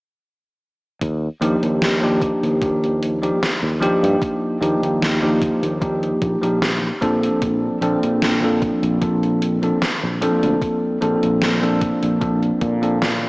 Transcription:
1.01 1.27 D#2 medium
1.01 kick loud
1.01 closed hi-hat medium
1.41 1.55 D#2 loud
1.41 1.97 F3 medium
1.41 1.97 A#3 medium
1.41 1.97 D4 medium
1.41 1.98 D#4 medium
1.41 1.98 G4 medium
1.41 closed hi-hat medium
1.63 2.30 D#2 medium
1.63 closed hi-hat medium
1.82 snare loud
1.82 closed hi-hat medium
2.02 2.56 F3 medium
2.02 2.57 A#3 medium
2.02 2.57 D4 medium
2.02 2.57 D#4 medium
2.02 2.57 G4 medium
2.21 kick loud
2.21 closed hi-hat medium
2.43 3.30 D#2 medium
2.43 closed hi-hat soft
2.61 3.17 F3 medium
2.61 3.17 A#3 medium
2.61 3.18 D4 medium
2.61 3.18 D#4 medium
2.61 3.18 G4 medium
2.61 kick loud
2.61 closed hi-hat medium
2.83 closed hi-hat soft
3.02 closed hi-hat medium
3.22 3.38 F3 medium
3.22 3.38 A#3 medium
3.22 3.38 D4 medium
3.22 3.38 D#4 medium
3.22 3.38 G4 medium
3.22 closed hi-hat soft
3.42 snare loud
3.42 closed hi-hat medium
3.63 3.87 D#2 medium
3.80 4.56 F3 medium
3.80 4.57 A#3 medium
3.80 4.57 D4 medium
3.80 4.57 D#4 medium
3.80 4.57 G4 loud
3.80 closed hi-hat medium
4.03 4.15 G2 loud
4.03 closed hi-hat medium
4.22 kick loud
4.22 closed hi-hat medium
4.61 4.75 D#2 medium
4.61 5.17 F3 medium
4.61 5.17 A#3 medium
4.61 5.17 D4 medium
4.61 5.18 D#4 medium
4.61 5.18 G4 medium
4.61 closed hi-hat medium
4.83 5.50 D#2 medium
4.83 closed hi-hat medium
5.03 snare loud
5.03 closed hi-hat medium
5.22 5.77 F3 medium
5.22 5.77 A#3 medium
5.22 5.77 D4 medium
5.22 5.77 D#4 medium
5.22 5.77 G4 medium
5.42 kick loud
5.42 closed hi-hat medium
5.63 6.10 D#2 medium
5.63 closed hi-hat soft
5.81 6.37 F3 medium
5.81 6.37 A#3 medium
5.81 6.37 D4 medium
5.81 6.38 D#4 medium
5.81 6.38 G4 medium
5.81 kick loud
5.81 closed hi-hat medium
6.03 closed hi-hat soft
6.22 6.35 A#1 medium
6.22 kick loud
6.22 closed hi-hat medium
6.41 6.90 A#1 medium
6.41 6.58 F3 medium
6.41 6.58 A#3 medium
6.41 6.58 D4 medium
6.41 6.58 D#4 medium
6.41 6.58 G4 medium
6.41 closed hi-hat soft
6.62 snare loud
6.62 closed hi-hat medium
7.01 7.28 A#1 medium
7.01 7.77 F3 medium
7.01 7.77 A#3 medium
7.01 7.77 C4 medium
7.01 7.77 D4 medium
7.01 7.78 A4 loud
7.01 kick medium
7.01 closed hi-hat medium
7.23 closed hi-hat soft
7.42 7.68 A#1 medium
7.42 kick loud
7.42 closed hi-hat medium
7.81 7.95 A#1 medium
7.81 8.38 F3 medium
7.81 8.38 A#3 medium
7.81 8.38 C4 medium
7.81 8.38 D4 medium
7.81 8.38 A4 medium
7.81 closed hi-hat medium
8.03 8.70 A#1 medium
8.03 closed hi-hat medium
8.22 snare loud
8.22 closed hi-hat medium
8.42 8.97 F3 medium
8.42 8.97 A#3 medium
8.42 8.97 C4 medium
8.42 8.97 D4 medium
8.42 8.98 A4 medium
8.62 kick loud
8.62 closed hi-hat medium
8.83 9.70 A#1 medium
8.83 closed hi-hat soft
9.01 9.57 F3 medium
9.01 9.58 A#3 medium
9.01 9.58 C4 medium
9.01 9.58 D4 medium
9.01 9.58 A4 medium
9.01 kick loud
9.01 closed hi-hat medium
9.23 closed hi-hat soft
9.42 closed hi-hat medium
9.62 9.78 F3 medium
9.62 9.78 A#3 medium
9.62 9.78 C4 medium
9.62 9.79 D4 medium
9.62 9.79 A4 medium
9.62 closed hi-hat soft
9.82 snare loud
9.82 closed hi-hat medium
10.03 10.27 A#1 medium
10.21 10.97 F3 medium
10.21 10.97 A#3 medium
10.21 10.97 C4 medium
10.21 10.97 D4 medium
10.21 10.98 A4 loud
10.21 closed hi-hat medium
10.43 10.55 D2 loud
10.43 closed hi-hat medium
10.62 kick loud
10.62 closed hi-hat medium
11.01 11.15 A#1 loud
11.01 11.57 F3 medium
11.01 11.57 A#3 medium
11.01 11.58 C4 medium
11.01 11.58 D4 medium
11.01 11.58 A4 medium
11.01 closed hi-hat medium
11.23 11.90 A#1 medium
11.23 closed hi-hat soft
11.42 snare loud
11.42 closed hi-hat medium
11.61 12.16 F3 medium
11.61 12.17 A#3 medium
11.61 12.17 C4 medium
11.61 12.17 D4 medium
11.61 12.17 A4 medium
11.61 closed hi-hat soft
11.82 kick loud
11.82 closed hi-hat medium
12.03 12.50 A#1 medium
12.03 closed hi-hat soft
12.21 12.77 F3 medium
12.21 12.77 A#3 medium
12.21 12.77 C4 medium
12.21 12.78 D4 medium
12.21 12.78 A4 medium
12.21 kick loud
12.21 closed hi-hat medium
12.43 closed hi-hat soft
12.61 13.29 A#2 medium
12.61 kick loud
12.61 closed hi-hat medium
12.82 12.98 F3 medium
12.82 12.98 A#3 medium
12.82 12.98 C4 medium
12.82 12.98 D4 medium
12.82 12.98 A4 medium
12.82 closed hi-hat soft
13.02 snare loud
13.02 closed hi-hat medium

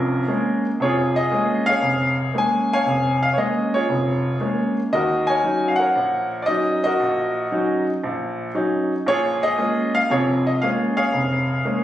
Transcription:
0.00 0.22 F1 medium
0.00 0.22 F2 medium
0.00 0.27 C#4 medium
0.00 0.62 F4 medium
0.00 0.62 A#4 medium
0.28 0.65 G#3 medium
0.28 0.65 A#3 soft
0.28 0.66 C#4 soft
0.80 1.25 F1 medium
0.80 1.81 F4 medium
0.80 1.18 G#4 medium
0.80 1.17 C#5 medium
1.16 1.68 G#4 medium
1.16 1.64 D#5 medium
1.31 1.69 G#3 medium
1.31 1.68 A#3 soft
1.31 1.69 C#4 medium
1.66 2.68 G#4 medium
1.66 2.67 C#5 medium
1.66 2.15 F5 loud
1.82 2.27 F1 medium
2.34 2.71 G#3 soft
2.34 2.72 A#3 soft
2.34 2.72 C#4 medium
2.34 2.69 G#5 medium
2.73 3.32 C#5 medium
2.73 3.21 F5 medium
2.73 3.20 G#5 loud
2.86 3.31 F1 medium
3.23 3.35 F5 medium
3.33 3.75 G#3 medium
3.33 3.38 C#5 medium
3.37 3.75 A#3 soft
3.37 3.75 C#4 medium
3.37 3.74 D#5 medium
3.74 4.74 F4 medium
3.74 4.74 G#4 soft
3.74 4.73 C#5 medium
3.89 4.34 F1 medium
4.40 4.78 G#3 soft
4.40 4.78 A#3 soft
4.40 4.78 C#4 medium
4.93 5.38 D#2 medium
4.93 5.93 F#4 medium
4.93 5.78 A#4 medium
4.93 5.29 D#5 medium
5.27 5.78 C#5 medium
5.27 5.71 G#5 medium
5.44 5.81 F#3 medium
5.44 5.81 C#4 soft
5.44 5.82 D#4 medium
5.68 5.79 F5 medium
5.76 6.79 A#4 medium
5.76 6.26 F#5 medium
5.80 6.79 C#5 medium
5.96 6.41 A#1 medium
6.42 6.47 D5 medium
6.42 6.80 D#5 loud
6.48 6.85 F#3 medium
6.48 6.85 C#4 soft
6.48 6.85 D#4 medium
6.84 7.84 F#4 medium
6.84 7.84 A#4 medium
6.84 7.83 D#5 loud
7.00 7.45 A#1 medium
7.52 7.89 F#3 soft
7.52 7.88 C#4 soft
7.52 7.89 D#4 medium
8.04 8.48 A#1 medium
8.55 8.92 F#3 soft
8.55 8.92 C#4 soft
8.55 8.92 D#4 medium
9.06 9.51 A#1 medium
9.06 9.51 A#2 medium
9.06 10.07 F4 medium
9.06 9.42 G#4 medium
9.06 9.44 C#5 loud
9.43 10.09 G#4 medium
9.43 9.91 D#5 loud
9.58 9.95 G#3 soft
9.58 9.95 A#3 soft
9.58 9.95 C#4 medium
9.95 10.11 F5 loud
10.10 10.55 F1 medium
10.10 10.55 F2 medium
10.10 11.10 F4 medium
10.10 10.95 G#4 medium
10.10 10.47 C#5 medium
10.47 10.52 D#5 medium
10.62 10.99 G#3 medium
10.62 10.99 A#3 soft
10.62 10.99 C#4 medium
10.62 10.70 F5 medium
10.97 11.84 G#4 medium
10.97 11.84 C#5 medium
10.97 11.84 F5 medium
11.13 11.58 F1 medium
11.65 11.84 G#3 soft
11.65 11.84 A#3 soft
11.65 11.84 C#4 medium

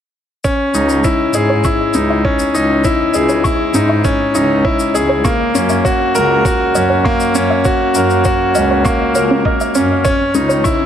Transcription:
0.44 0.73 C#4 medium
0.44 0.48 C#5 medium
0.44 kick medium
0.44 shaker soft
0.74 0.98 C#2 medium
0.74 1.03 D#4 medium
0.74 shaker medium
0.89 shaker soft
1.04 1.22 E4 medium
1.04 1.08 C#5 medium
1.04 kick medium
1.04 shaker soft
1.34 1.58 G#2 medium
1.34 1.52 G#4 medium
1.34 1.38 D#5 medium
1.34 shaker medium
1.50 1.55 C#5 medium
1.64 1.93 E4 medium
1.64 1.70 C#6 medium
1.64 kick medium
1.64 shaker soft
1.94 2.18 C#2 medium
1.94 2.00 C#4 medium
1.94 2.23 D#4 medium
1.94 shaker medium
2.10 2.13 E5 medium
2.25 2.53 C#4 medium
2.25 2.28 C#5 medium
2.25 kick medium
2.39 shaker medium
2.54 2.78 C#2 medium
2.54 2.83 D#4 medium
2.54 shaker medium
2.84 3.13 E4 medium
2.84 2.88 C#5 medium
2.84 kick medium
2.84 shaker soft
3.14 3.38 C#2 medium
3.14 3.43 G#4 medium
3.14 3.18 D#5 medium
3.14 shaker medium
3.29 3.35 C#5 medium
3.29 shaker soft
3.44 3.62 E4 medium
3.44 3.50 C#6 medium
3.44 kick medium
3.44 shaker soft
3.74 3.98 G#2 medium
3.74 3.80 C#4 medium
3.74 4.03 D#4 medium
3.74 shaker medium
3.89 3.93 E5 medium
4.04 4.33 C#4 medium
4.04 4.08 C#5 medium
4.04 kick medium
4.04 shaker soft
4.34 4.58 C#2 medium
4.34 4.63 D#4 medium
4.34 shaker medium
4.65 4.82 E4 medium
4.65 4.68 C#5 medium
4.65 kick medium
4.79 shaker medium
4.94 5.18 C#2 medium
4.94 5.23 G#4 medium
4.94 4.98 D#5 medium
4.94 shaker medium
5.09 5.15 C#5 medium
5.24 5.53 A#3 medium
5.24 5.30 C#6 loud
5.24 kick medium
5.24 shaker soft
5.55 5.78 F#2 medium
5.55 5.60 C#4 medium
5.55 5.83 C#4 medium
5.55 shaker medium
5.69 5.73 E5 medium
5.69 shaker soft
5.84 6.02 F#4 medium
5.84 5.88 C#5 medium
5.84 kick medium
5.84 shaker medium
6.15 6.38 C#2 medium
6.15 6.32 A#4 medium
6.15 shaker medium
6.45 6.74 F#4 medium
6.45 6.48 C#5 medium
6.45 kick loud
6.45 shaker medium
6.75 6.98 F#2 medium
6.75 7.04 C#4 medium
6.75 6.78 D#5 medium
6.75 shaker medium
6.90 6.96 C#5 medium
7.04 7.34 A#3 medium
7.04 7.10 C#6 medium
7.04 kick medium
7.20 shaker medium
7.35 7.58 F#2 medium
7.35 7.41 C#4 medium
7.35 7.64 C#4 medium
7.35 shaker medium
7.50 7.54 E5 medium
7.65 7.94 F#4 medium
7.65 7.68 C#5 medium
7.65 kick medium
7.65 shaker medium
7.95 8.18 F#2 medium
7.95 8.24 A#4 medium
7.95 shaker medium
8.10 shaker soft
8.24 8.42 F#4 medium
8.24 8.28 C#5 medium
8.24 kick medium
8.24 shaker medium
8.55 8.79 C#2 medium
8.55 8.83 C#4 medium
8.55 8.59 D#5 medium
8.55 shaker medium
8.71 8.76 C#5 medium
8.85 9.13 A#3 medium
8.85 8.91 C#6 medium
8.85 kick loud
8.85 shaker soft
9.15 9.38 C#2 medium
9.15 9.32 A#4 medium
9.15 9.24 C#5 medium
9.15 shaker medium
9.31 9.34 C#4 medium
9.45 9.73 A#4 medium
9.45 9.51 D#5 medium
9.45 kick medium
9.60 9.69 E5 medium
9.60 shaker soft
9.75 9.99 F#2 medium
9.75 10.03 C#4 medium
9.75 9.84 C#4 medium
9.75 shaker medium
10.05 10.33 C#4 medium
10.05 10.08 C#5 medium
10.05 kick medium
10.05 shaker medium
10.35 10.58 C#2 medium
10.35 10.38 C#4 medium
10.35 10.63 D#4 medium
10.35 shaker medium
10.49 10.55 C#5 medium
10.49 shaker soft
10.64 10.82 E4 medium
10.64 10.70 C#6 loud
10.64 kick medium
10.64 shaker soft

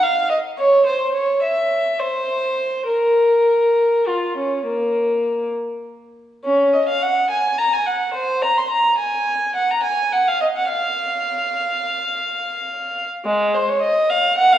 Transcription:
0.03 0.30 F5 medium
0.30 0.38 D#5 medium
0.58 0.85 C#5 medium
0.86 1.13 C5 medium
1.14 1.42 C#5 medium
1.43 1.99 E5 medium
2.00 2.88 C5 medium
2.87 4.04 A#4 medium
4.07 4.37 F4 medium
4.37 4.66 C#4 soft
4.67 5.53 A#3 soft
6.44 6.73 C#4 medium
6.74 6.88 D#5 medium
6.89 7.02 F5 medium
7.02 7.30 F#5 medium
7.30 7.58 G#5 medium
7.58 7.72 A#5 medium
7.73 7.87 G#5 medium
7.86 8.14 F#5 medium
8.14 8.42 C5 medium
8.42 8.56 A#5 medium
8.58 8.71 C6 medium
8.70 8.98 A#5 medium
8.98 9.54 G#5 medium
9.56 9.69 F#5 medium
9.70 9.84 A#5 medium
9.83 10.11 G#5 medium
10.12 10.27 F#5 medium
10.28 10.42 F5 medium
10.41 10.47 D#5 medium
10.56 10.69 F#5 medium
10.69 13.06 F5 medium
13.25 13.53 G#3 medium
13.54 13.68 C5 medium
13.69 13.82 C#5 medium
13.81 14.09 D#5 medium
14.10 14.38 F5 medium
14.38 14.51 F#5 medium
14.53 14.58 F5 medium

